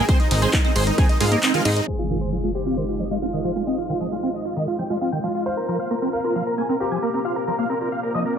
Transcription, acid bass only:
0.09 C4
0.31 D#3
0.42 G#3
0.53 A#3
0.65 C4
0.98 D#3
1.21 G#3
1.32 A#3
1.43 C4
1.54 D#3
1.65 G#3
2.10 D#3
2.32 F3
2.44 G#3
2.66 C4
2.77 D#3
3.00 F3
3.11 G#3
3.22 C4
3.33 D#3
3.45 F3
3.56 G#3
3.67 C4
3.89 D#3
4.01 F3
4.12 G#3
4.23 C4
4.56 D#3
4.79 F3
4.90 G#3
5.01 C4
5.12 D#3
5.24 F3
5.68 F3
5.91 A#3
6.02 C4
6.24 F4
6.35 F3
6.58 A#3
6.69 C4
6.80 F4
6.92 F3
7.03 A#3
7.14 C4
7.25 F4
7.48 F3
7.59 A#3
7.70 C4
7.81 F4
8.15 F3

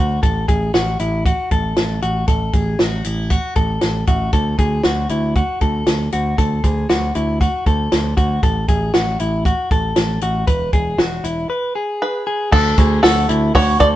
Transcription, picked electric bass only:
Already playing: D2
0.23 A1
0.49 A1
0.74 A1
1.00 A1
1.52 A1
1.77 A1
2.02 A1
2.28 A1
2.54 A1
2.80 A1
3.06 A1
3.56 A1
3.83 A1
4.08 A1
4.33 D2
4.59 D2
4.85 D2
5.10 D2
5.62 D2
5.87 D2
6.13 D2
6.39 D2
6.64 D2
6.90 D2
7.15 D2
7.66 D2
7.92 D2
8.17 D2
8.43 A1
8.69 A1
8.95 A1
9.20 A1
9.71 A1
9.97 A1
10.22 A1
10.48 E1
10.73 E1
10.98 E1
11.24 E1
12.53 D2
12.78 D2
13.04 D2
13.29 D2
13.55 D2
13.81 D2

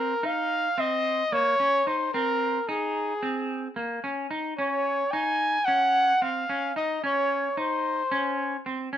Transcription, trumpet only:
Already playing: A#4
0.25 F5
0.79 D#5
1.33 C#5
1.87 C5
2.14 A#4
2.69 G#4
4.58 C#5
5.12 G#5
5.65 F#5
6.22 F5
6.77 D#5
7.05 C#5
7.58 C5

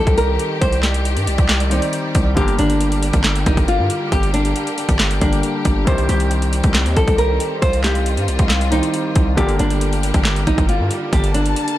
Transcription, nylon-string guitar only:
Already playing: A4
0.18 A#4
0.61 C5
0.84 G4
1.71 D#4
2.36 G4
2.59 D4
3.46 D#4
3.68 F4
4.12 G4
4.34 D4
5.21 D4
5.88 C5
6.09 G4
6.96 A4
7.18 A#4
7.62 C5
7.84 G4
8.72 D#4
9.37 G4
9.60 D4
10.47 D#4
10.69 F4
11.13 G4
11.34 D4

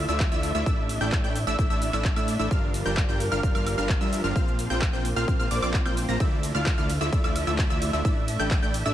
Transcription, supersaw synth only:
0.09 A3 E4 F4 D5 E5
0.32 A3 E4 F4 D5 E5
0.55 A3 E4 F4 D5 E5
0.66 A3 D4 E4 D5 E5
1.01 A3 D4 E4 D5 G5
1.24 A3 D4 E4 D5 G5
1.47 A3 D4 E4 D5 E5
1.59 A3 D4 E4 D5 E5
1.70 A3 D4 E4 D5 E5
1.93 A3 D4 E4 D5 E5
2.16 A3 D4 E4 D5 E5
2.39 A3 D4 E4 D5 E5
2.51 G3 D4 F4 A#4 F5
2.86 G3 D4 F4 A#4 G5
3.09 G3 D4 F4 A#4 G5
3.32 G3 D4 F4 A#4 F5
3.43 G3 D4 F4 A#4 F5
3.55 G3 D4 F4 A#4 F5
3.78 G3 D4 F4 A#4 F5
4.01 G3 D4 F4 A#4 E5
4.24 G3 D4 F4 A#4 F5
4.36 A#3 C4 F4 C5 F5
4.70 A#3 C4 F4 C5 G5
4.93 A#3 C4 F4 C5 G5
5.16 A#3 C4 F4 C5 F5
5.28 A#3 C4 F4 C5 F5
5.39 A#3 C4 F4 C5 F5
5.51 A#3 C4 F4 C5 D5
5.62 A#3 C4 F4 C5 D5
5.86 A#3 C4 F4 C5 G5
6.09 A#3 C4 F4 C5 A#5
6.20 A3 E4 F4 D5 E5
6.55 A3 E4 F4 D5 F5
6.78 A3 E4 F4 D5 F5
7.01 A3 E4 F4 D5 E5
7.12 A3 E4 D5 E5
7.24 A3 E4 F4 D5 E5
7.47 A3 E4 F4 D5 E5
7.70 A3 E4 F4 D5 E5
7.93 A3 E4 F4 D5 E5
8.05 A3 D4 E4 D5 E5
8.40 A3 D4 E4 D5 G5
8.63 A3 D4 E4 D5 G5
8.86 A3 D4 E4 D5 E5

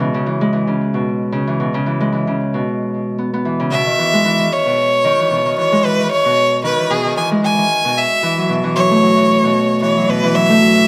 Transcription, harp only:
Already playing: G#3
0.00 B2
0.14 C#3
0.26 E3
0.41 G#3
0.53 E3
0.67 C#3
0.94 B2
1.32 C#3
1.47 E3
1.60 B2
1.74 C#3
1.86 E3
2.00 G#3
2.12 E3
2.27 C#3
2.54 B2
3.18 B3
3.33 B3
3.45 E3
3.60 C#3
3.72 B2
3.86 D#3
3.98 E3
4.13 G#3
4.25 E3
4.39 D#3
4.66 B2
5.04 D#3
5.19 E3
5.31 B2
5.46 D#3
5.58 E3
5.72 G#3
5.84 E3
5.99 D#3
6.25 B2
6.64 D#3
6.79 E3
6.90 B2
7.05 D#3
7.17 E3
7.32 G#3
7.43 E3
7.58 D#3
7.85 B2
8.23 E3
8.38 F#3
8.49 B2
8.64 E3
8.75 F#3
8.91 A3
9.02 F#3
9.17 E3
9.43 B2
9.82 E3
9.97 F#3
10.08 B2
10.23 E3
10.34 F#3
10.50 A3
10.61 F#3
10.76 E3

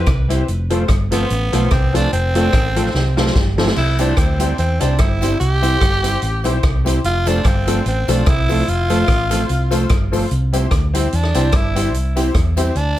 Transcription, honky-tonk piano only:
0.29 C4 E4 G4 C5
0.70 C4 F4 A4 C5
1.11 C4 F4 A4 C5
1.52 C4 F4 A4 C5
1.93 C4 F4 A4 C5
2.35 C4 F4 A4 C5
2.76 C4 F4 A4 C5
3.17 C4 F4 A4 C5
3.58 C4 F4 A4 C5
3.99 C4 E4 G4 C5
4.39 C4 E4 G4 C5
4.80 C4 E4 G4 C5
5.21 C4 E4 G4 C5
5.62 C4 E4 G4 C5
6.03 C4 E4 G4 C5
6.44 C4 E4 G4 C5
6.85 C4 E4 G4 C5
7.26 C4 F4 A4 C5
7.67 C4 F4 A4 C5
8.08 C4 F4 A4 C5
8.49 C4 F4 A4 C5
8.89 C4 F4 A4 C5
9.30 C4 F4 A4 C5
9.70 C4 F4 A4 C5
10.12 C4 F4 A4 C5
10.53 C4 E4 G4 C5
10.94 C4 E4 G4 C5
11.34 C4 E4 G4 C5
11.75 C4 E4 G4 C5
12.16 C4 E4 G4 C5
12.57 C4 E4 G4 C5

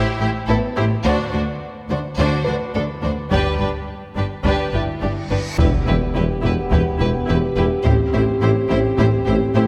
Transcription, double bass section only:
0.20 A1
0.48 A1
0.77 A1
1.05 D2
1.34 D2
1.90 D2
2.18 D2
2.46 D2
2.75 D2
3.03 D2
3.31 G1
3.60 G1
4.16 G1
4.44 G1
4.74 G1
5.01 G1
5.30 G1
5.59 E1
5.87 E1
6.16 E1
6.44 E1
6.72 E1
7.00 E1
7.29 E1
7.57 E1
7.85 A1
8.14 A1
8.42 A1
8.70 A1
8.99 A1
9.27 A1
9.55 A1

